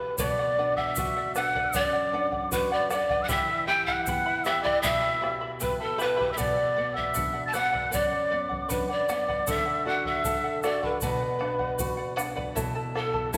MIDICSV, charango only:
0, 0, Header, 1, 2, 480
1, 0, Start_track
1, 0, Key_signature, 2, "minor"
1, 0, Tempo, 773196
1, 119, Time_signature, 2, 2, 24, 8
1, 8301, End_track
2, 0, Start_track
2, 0, Title_t, "Charango"
2, 0, Program_c, 0, 24
2, 117, Note_on_c, 0, 71, 71
2, 120, Note_on_c, 0, 74, 68
2, 122, Note_on_c, 0, 78, 79
2, 235, Note_off_c, 0, 78, 0
2, 239, Note_off_c, 0, 71, 0
2, 240, Note_off_c, 0, 74, 0
2, 242, Note_on_c, 0, 78, 50
2, 251, Note_on_c, 0, 74, 42
2, 358, Note_off_c, 0, 74, 0
2, 359, Note_off_c, 0, 78, 0
2, 361, Note_on_c, 0, 71, 57
2, 366, Note_on_c, 0, 74, 62
2, 367, Note_on_c, 0, 78, 67
2, 475, Note_off_c, 0, 78, 0
2, 481, Note_off_c, 0, 71, 0
2, 482, Note_on_c, 0, 78, 53
2, 483, Note_off_c, 0, 74, 0
2, 492, Note_on_c, 0, 74, 45
2, 601, Note_off_c, 0, 74, 0
2, 601, Note_off_c, 0, 78, 0
2, 605, Note_on_c, 0, 71, 59
2, 608, Note_on_c, 0, 74, 64
2, 616, Note_on_c, 0, 78, 64
2, 716, Note_off_c, 0, 78, 0
2, 723, Note_off_c, 0, 71, 0
2, 723, Note_off_c, 0, 74, 0
2, 723, Note_on_c, 0, 78, 51
2, 730, Note_on_c, 0, 74, 49
2, 840, Note_off_c, 0, 74, 0
2, 842, Note_off_c, 0, 78, 0
2, 844, Note_on_c, 0, 71, 80
2, 848, Note_on_c, 0, 74, 78
2, 853, Note_on_c, 0, 78, 86
2, 960, Note_off_c, 0, 78, 0
2, 963, Note_off_c, 0, 71, 0
2, 963, Note_off_c, 0, 74, 0
2, 968, Note_on_c, 0, 78, 67
2, 970, Note_on_c, 0, 74, 61
2, 972, Note_on_c, 0, 71, 57
2, 1079, Note_off_c, 0, 71, 0
2, 1081, Note_off_c, 0, 74, 0
2, 1085, Note_off_c, 0, 78, 0
2, 1086, Note_on_c, 0, 71, 74
2, 1089, Note_on_c, 0, 74, 74
2, 1093, Note_on_c, 0, 78, 78
2, 1189, Note_off_c, 0, 78, 0
2, 1196, Note_on_c, 0, 78, 55
2, 1202, Note_off_c, 0, 74, 0
2, 1204, Note_off_c, 0, 71, 0
2, 1209, Note_on_c, 0, 74, 44
2, 1319, Note_off_c, 0, 74, 0
2, 1319, Note_off_c, 0, 78, 0
2, 1323, Note_on_c, 0, 71, 62
2, 1327, Note_on_c, 0, 74, 63
2, 1330, Note_on_c, 0, 78, 63
2, 1433, Note_off_c, 0, 78, 0
2, 1441, Note_on_c, 0, 78, 50
2, 1442, Note_off_c, 0, 74, 0
2, 1443, Note_off_c, 0, 71, 0
2, 1450, Note_on_c, 0, 74, 42
2, 1557, Note_off_c, 0, 74, 0
2, 1560, Note_on_c, 0, 71, 62
2, 1562, Note_off_c, 0, 78, 0
2, 1565, Note_on_c, 0, 74, 59
2, 1568, Note_on_c, 0, 78, 58
2, 1679, Note_off_c, 0, 78, 0
2, 1682, Note_off_c, 0, 71, 0
2, 1684, Note_off_c, 0, 74, 0
2, 1686, Note_on_c, 0, 78, 58
2, 1691, Note_on_c, 0, 74, 43
2, 1795, Note_off_c, 0, 74, 0
2, 1799, Note_off_c, 0, 78, 0
2, 1800, Note_on_c, 0, 71, 73
2, 1803, Note_on_c, 0, 74, 76
2, 1806, Note_on_c, 0, 78, 85
2, 1920, Note_off_c, 0, 78, 0
2, 1922, Note_off_c, 0, 71, 0
2, 1923, Note_off_c, 0, 74, 0
2, 1928, Note_on_c, 0, 78, 65
2, 1932, Note_on_c, 0, 71, 54
2, 1932, Note_on_c, 0, 74, 65
2, 2036, Note_off_c, 0, 74, 0
2, 2037, Note_off_c, 0, 71, 0
2, 2038, Note_on_c, 0, 67, 68
2, 2038, Note_on_c, 0, 79, 82
2, 2039, Note_on_c, 0, 64, 77
2, 2040, Note_on_c, 0, 76, 86
2, 2042, Note_off_c, 0, 78, 0
2, 2044, Note_on_c, 0, 83, 83
2, 2147, Note_off_c, 0, 83, 0
2, 2155, Note_off_c, 0, 76, 0
2, 2155, Note_on_c, 0, 83, 56
2, 2157, Note_off_c, 0, 64, 0
2, 2161, Note_off_c, 0, 67, 0
2, 2161, Note_off_c, 0, 79, 0
2, 2162, Note_on_c, 0, 76, 47
2, 2165, Note_on_c, 0, 64, 46
2, 2273, Note_off_c, 0, 64, 0
2, 2273, Note_off_c, 0, 76, 0
2, 2279, Note_off_c, 0, 83, 0
2, 2279, Note_on_c, 0, 79, 54
2, 2280, Note_on_c, 0, 64, 67
2, 2280, Note_on_c, 0, 76, 65
2, 2286, Note_on_c, 0, 83, 65
2, 2398, Note_off_c, 0, 83, 0
2, 2401, Note_off_c, 0, 79, 0
2, 2402, Note_off_c, 0, 64, 0
2, 2402, Note_off_c, 0, 76, 0
2, 2405, Note_on_c, 0, 83, 54
2, 2410, Note_on_c, 0, 76, 50
2, 2412, Note_on_c, 0, 64, 46
2, 2524, Note_off_c, 0, 83, 0
2, 2527, Note_off_c, 0, 76, 0
2, 2528, Note_off_c, 0, 64, 0
2, 2531, Note_on_c, 0, 79, 55
2, 2534, Note_on_c, 0, 64, 60
2, 2536, Note_on_c, 0, 76, 61
2, 2537, Note_on_c, 0, 83, 63
2, 2635, Note_off_c, 0, 83, 0
2, 2641, Note_off_c, 0, 64, 0
2, 2641, Note_off_c, 0, 76, 0
2, 2642, Note_on_c, 0, 83, 52
2, 2647, Note_off_c, 0, 79, 0
2, 2649, Note_on_c, 0, 64, 46
2, 2649, Note_on_c, 0, 76, 53
2, 2759, Note_off_c, 0, 64, 0
2, 2763, Note_off_c, 0, 76, 0
2, 2763, Note_off_c, 0, 83, 0
2, 2764, Note_on_c, 0, 67, 74
2, 2767, Note_on_c, 0, 64, 89
2, 2768, Note_on_c, 0, 79, 80
2, 2770, Note_on_c, 0, 76, 87
2, 2771, Note_on_c, 0, 83, 83
2, 2877, Note_off_c, 0, 83, 0
2, 2878, Note_off_c, 0, 64, 0
2, 2879, Note_off_c, 0, 76, 0
2, 2879, Note_off_c, 0, 79, 0
2, 2880, Note_off_c, 0, 67, 0
2, 2884, Note_on_c, 0, 83, 72
2, 2886, Note_on_c, 0, 64, 60
2, 2887, Note_on_c, 0, 67, 53
2, 2887, Note_on_c, 0, 76, 67
2, 2887, Note_on_c, 0, 79, 65
2, 2988, Note_off_c, 0, 79, 0
2, 2989, Note_off_c, 0, 67, 0
2, 2992, Note_off_c, 0, 83, 0
2, 2993, Note_off_c, 0, 64, 0
2, 2993, Note_off_c, 0, 76, 0
2, 2996, Note_on_c, 0, 67, 74
2, 2996, Note_on_c, 0, 79, 77
2, 2999, Note_on_c, 0, 83, 78
2, 3000, Note_on_c, 0, 64, 80
2, 3000, Note_on_c, 0, 76, 82
2, 3107, Note_off_c, 0, 83, 0
2, 3111, Note_off_c, 0, 76, 0
2, 3115, Note_off_c, 0, 64, 0
2, 3115, Note_on_c, 0, 83, 53
2, 3118, Note_on_c, 0, 76, 51
2, 3120, Note_off_c, 0, 67, 0
2, 3120, Note_off_c, 0, 79, 0
2, 3122, Note_on_c, 0, 64, 46
2, 3230, Note_off_c, 0, 64, 0
2, 3232, Note_off_c, 0, 76, 0
2, 3233, Note_on_c, 0, 79, 64
2, 3235, Note_off_c, 0, 83, 0
2, 3237, Note_on_c, 0, 64, 62
2, 3240, Note_on_c, 0, 76, 70
2, 3242, Note_on_c, 0, 83, 63
2, 3349, Note_off_c, 0, 83, 0
2, 3354, Note_off_c, 0, 76, 0
2, 3355, Note_off_c, 0, 64, 0
2, 3356, Note_on_c, 0, 83, 53
2, 3358, Note_off_c, 0, 79, 0
2, 3361, Note_on_c, 0, 76, 51
2, 3363, Note_on_c, 0, 64, 43
2, 3472, Note_off_c, 0, 64, 0
2, 3478, Note_off_c, 0, 76, 0
2, 3478, Note_on_c, 0, 79, 58
2, 3479, Note_on_c, 0, 64, 56
2, 3480, Note_off_c, 0, 83, 0
2, 3485, Note_on_c, 0, 76, 64
2, 3486, Note_on_c, 0, 83, 60
2, 3590, Note_off_c, 0, 83, 0
2, 3595, Note_off_c, 0, 76, 0
2, 3598, Note_off_c, 0, 64, 0
2, 3598, Note_on_c, 0, 83, 51
2, 3601, Note_off_c, 0, 79, 0
2, 3603, Note_on_c, 0, 76, 50
2, 3606, Note_on_c, 0, 64, 44
2, 3707, Note_off_c, 0, 64, 0
2, 3707, Note_off_c, 0, 76, 0
2, 3709, Note_off_c, 0, 83, 0
2, 3712, Note_on_c, 0, 67, 75
2, 3713, Note_on_c, 0, 79, 70
2, 3715, Note_on_c, 0, 64, 78
2, 3715, Note_on_c, 0, 76, 74
2, 3717, Note_on_c, 0, 83, 82
2, 3821, Note_off_c, 0, 83, 0
2, 3824, Note_off_c, 0, 76, 0
2, 3825, Note_off_c, 0, 64, 0
2, 3828, Note_on_c, 0, 83, 67
2, 3829, Note_off_c, 0, 67, 0
2, 3829, Note_off_c, 0, 79, 0
2, 3832, Note_on_c, 0, 76, 60
2, 3833, Note_on_c, 0, 64, 62
2, 3836, Note_on_c, 0, 79, 63
2, 3837, Note_on_c, 0, 67, 60
2, 3952, Note_off_c, 0, 64, 0
2, 3954, Note_on_c, 0, 71, 75
2, 3956, Note_off_c, 0, 67, 0
2, 3956, Note_off_c, 0, 83, 0
2, 3958, Note_off_c, 0, 76, 0
2, 3958, Note_off_c, 0, 79, 0
2, 3958, Note_on_c, 0, 74, 79
2, 3961, Note_on_c, 0, 78, 80
2, 4070, Note_off_c, 0, 78, 0
2, 4077, Note_off_c, 0, 74, 0
2, 4077, Note_on_c, 0, 78, 53
2, 4079, Note_off_c, 0, 71, 0
2, 4085, Note_on_c, 0, 74, 46
2, 4192, Note_off_c, 0, 74, 0
2, 4197, Note_on_c, 0, 71, 58
2, 4199, Note_on_c, 0, 74, 61
2, 4200, Note_off_c, 0, 78, 0
2, 4206, Note_on_c, 0, 78, 59
2, 4300, Note_off_c, 0, 78, 0
2, 4308, Note_on_c, 0, 78, 51
2, 4311, Note_off_c, 0, 74, 0
2, 4319, Note_on_c, 0, 74, 42
2, 4320, Note_off_c, 0, 71, 0
2, 4427, Note_off_c, 0, 74, 0
2, 4432, Note_on_c, 0, 71, 60
2, 4433, Note_off_c, 0, 78, 0
2, 4434, Note_on_c, 0, 74, 62
2, 4441, Note_on_c, 0, 78, 62
2, 4545, Note_off_c, 0, 78, 0
2, 4552, Note_on_c, 0, 78, 57
2, 4553, Note_off_c, 0, 74, 0
2, 4557, Note_off_c, 0, 71, 0
2, 4561, Note_on_c, 0, 74, 42
2, 4670, Note_off_c, 0, 74, 0
2, 4675, Note_off_c, 0, 78, 0
2, 4675, Note_on_c, 0, 71, 73
2, 4677, Note_on_c, 0, 74, 76
2, 4682, Note_on_c, 0, 78, 84
2, 4783, Note_off_c, 0, 78, 0
2, 4789, Note_off_c, 0, 74, 0
2, 4790, Note_on_c, 0, 78, 67
2, 4791, Note_off_c, 0, 71, 0
2, 4797, Note_on_c, 0, 74, 59
2, 4798, Note_on_c, 0, 71, 59
2, 4902, Note_off_c, 0, 71, 0
2, 4908, Note_off_c, 0, 74, 0
2, 4909, Note_off_c, 0, 78, 0
2, 4910, Note_on_c, 0, 71, 71
2, 4915, Note_on_c, 0, 74, 76
2, 4916, Note_on_c, 0, 78, 80
2, 5028, Note_off_c, 0, 78, 0
2, 5035, Note_on_c, 0, 78, 52
2, 5036, Note_off_c, 0, 71, 0
2, 5037, Note_off_c, 0, 74, 0
2, 5045, Note_on_c, 0, 74, 44
2, 5153, Note_off_c, 0, 74, 0
2, 5156, Note_on_c, 0, 71, 59
2, 5157, Note_off_c, 0, 78, 0
2, 5160, Note_on_c, 0, 74, 65
2, 5164, Note_on_c, 0, 78, 62
2, 5265, Note_off_c, 0, 78, 0
2, 5273, Note_on_c, 0, 78, 53
2, 5278, Note_off_c, 0, 74, 0
2, 5279, Note_off_c, 0, 71, 0
2, 5285, Note_on_c, 0, 74, 43
2, 5389, Note_off_c, 0, 74, 0
2, 5391, Note_on_c, 0, 71, 58
2, 5393, Note_off_c, 0, 78, 0
2, 5396, Note_on_c, 0, 74, 62
2, 5400, Note_on_c, 0, 78, 63
2, 5512, Note_off_c, 0, 78, 0
2, 5516, Note_off_c, 0, 71, 0
2, 5518, Note_off_c, 0, 74, 0
2, 5520, Note_on_c, 0, 78, 59
2, 5525, Note_on_c, 0, 74, 47
2, 5634, Note_off_c, 0, 74, 0
2, 5637, Note_off_c, 0, 78, 0
2, 5640, Note_on_c, 0, 71, 68
2, 5642, Note_on_c, 0, 74, 77
2, 5644, Note_on_c, 0, 78, 86
2, 5757, Note_off_c, 0, 78, 0
2, 5761, Note_off_c, 0, 71, 0
2, 5762, Note_off_c, 0, 74, 0
2, 5765, Note_on_c, 0, 78, 65
2, 5769, Note_on_c, 0, 71, 53
2, 5770, Note_on_c, 0, 74, 59
2, 5874, Note_off_c, 0, 78, 0
2, 5875, Note_off_c, 0, 74, 0
2, 5876, Note_off_c, 0, 71, 0
2, 5878, Note_on_c, 0, 69, 75
2, 5882, Note_on_c, 0, 78, 87
2, 5883, Note_on_c, 0, 74, 79
2, 5988, Note_off_c, 0, 78, 0
2, 5995, Note_on_c, 0, 78, 54
2, 6000, Note_off_c, 0, 69, 0
2, 6002, Note_off_c, 0, 74, 0
2, 6009, Note_on_c, 0, 74, 41
2, 6115, Note_off_c, 0, 74, 0
2, 6117, Note_on_c, 0, 69, 58
2, 6118, Note_off_c, 0, 78, 0
2, 6123, Note_on_c, 0, 74, 69
2, 6126, Note_on_c, 0, 78, 67
2, 6233, Note_off_c, 0, 78, 0
2, 6239, Note_off_c, 0, 69, 0
2, 6239, Note_off_c, 0, 74, 0
2, 6241, Note_on_c, 0, 78, 53
2, 6246, Note_on_c, 0, 74, 44
2, 6355, Note_off_c, 0, 74, 0
2, 6357, Note_on_c, 0, 69, 54
2, 6361, Note_off_c, 0, 78, 0
2, 6362, Note_on_c, 0, 74, 56
2, 6370, Note_on_c, 0, 78, 64
2, 6473, Note_off_c, 0, 78, 0
2, 6479, Note_off_c, 0, 69, 0
2, 6481, Note_on_c, 0, 78, 59
2, 6482, Note_off_c, 0, 74, 0
2, 6490, Note_on_c, 0, 74, 47
2, 6595, Note_off_c, 0, 74, 0
2, 6598, Note_off_c, 0, 78, 0
2, 6603, Note_on_c, 0, 74, 74
2, 6604, Note_on_c, 0, 69, 68
2, 6605, Note_on_c, 0, 78, 80
2, 6711, Note_off_c, 0, 78, 0
2, 6715, Note_off_c, 0, 74, 0
2, 6716, Note_off_c, 0, 69, 0
2, 6718, Note_on_c, 0, 78, 64
2, 6723, Note_on_c, 0, 74, 62
2, 6724, Note_on_c, 0, 69, 57
2, 6837, Note_off_c, 0, 74, 0
2, 6839, Note_off_c, 0, 69, 0
2, 6839, Note_off_c, 0, 78, 0
2, 6841, Note_on_c, 0, 71, 70
2, 6845, Note_on_c, 0, 74, 75
2, 6847, Note_on_c, 0, 78, 85
2, 6949, Note_off_c, 0, 78, 0
2, 6956, Note_on_c, 0, 78, 49
2, 6960, Note_off_c, 0, 74, 0
2, 6961, Note_off_c, 0, 71, 0
2, 6967, Note_on_c, 0, 74, 41
2, 7066, Note_off_c, 0, 74, 0
2, 7068, Note_on_c, 0, 71, 56
2, 7071, Note_off_c, 0, 78, 0
2, 7073, Note_on_c, 0, 74, 65
2, 7078, Note_on_c, 0, 78, 61
2, 7188, Note_off_c, 0, 78, 0
2, 7194, Note_off_c, 0, 71, 0
2, 7195, Note_on_c, 0, 78, 55
2, 7196, Note_off_c, 0, 74, 0
2, 7203, Note_on_c, 0, 74, 42
2, 7314, Note_off_c, 0, 74, 0
2, 7314, Note_on_c, 0, 71, 56
2, 7316, Note_off_c, 0, 78, 0
2, 7322, Note_on_c, 0, 74, 64
2, 7323, Note_on_c, 0, 78, 57
2, 7424, Note_off_c, 0, 78, 0
2, 7431, Note_on_c, 0, 78, 60
2, 7433, Note_off_c, 0, 74, 0
2, 7436, Note_off_c, 0, 71, 0
2, 7440, Note_on_c, 0, 74, 46
2, 7542, Note_off_c, 0, 74, 0
2, 7546, Note_off_c, 0, 78, 0
2, 7549, Note_on_c, 0, 71, 80
2, 7549, Note_on_c, 0, 74, 90
2, 7554, Note_on_c, 0, 78, 93
2, 7663, Note_off_c, 0, 78, 0
2, 7668, Note_off_c, 0, 74, 0
2, 7670, Note_on_c, 0, 78, 68
2, 7671, Note_off_c, 0, 71, 0
2, 7675, Note_on_c, 0, 74, 69
2, 7678, Note_on_c, 0, 71, 64
2, 7789, Note_off_c, 0, 74, 0
2, 7791, Note_on_c, 0, 73, 75
2, 7792, Note_off_c, 0, 78, 0
2, 7793, Note_off_c, 0, 71, 0
2, 7794, Note_on_c, 0, 76, 85
2, 7795, Note_on_c, 0, 64, 86
2, 7796, Note_on_c, 0, 69, 80
2, 7798, Note_on_c, 0, 81, 92
2, 7907, Note_off_c, 0, 81, 0
2, 7910, Note_off_c, 0, 69, 0
2, 7915, Note_off_c, 0, 64, 0
2, 7915, Note_off_c, 0, 73, 0
2, 7915, Note_on_c, 0, 81, 47
2, 7916, Note_off_c, 0, 76, 0
2, 7917, Note_on_c, 0, 69, 47
2, 7922, Note_on_c, 0, 64, 44
2, 8033, Note_off_c, 0, 64, 0
2, 8036, Note_off_c, 0, 69, 0
2, 8036, Note_off_c, 0, 81, 0
2, 8038, Note_on_c, 0, 76, 58
2, 8041, Note_on_c, 0, 64, 66
2, 8043, Note_on_c, 0, 69, 58
2, 8045, Note_on_c, 0, 81, 69
2, 8147, Note_off_c, 0, 81, 0
2, 8151, Note_off_c, 0, 69, 0
2, 8155, Note_on_c, 0, 81, 51
2, 8157, Note_off_c, 0, 64, 0
2, 8158, Note_off_c, 0, 76, 0
2, 8159, Note_on_c, 0, 69, 51
2, 8164, Note_on_c, 0, 64, 41
2, 8271, Note_off_c, 0, 64, 0
2, 8275, Note_off_c, 0, 69, 0
2, 8276, Note_off_c, 0, 81, 0
2, 8276, Note_on_c, 0, 73, 81
2, 8277, Note_on_c, 0, 76, 77
2, 8279, Note_on_c, 0, 64, 79
2, 8301, Note_off_c, 0, 64, 0
2, 8301, Note_off_c, 0, 73, 0
2, 8301, Note_off_c, 0, 76, 0
2, 8301, End_track
0, 0, End_of_file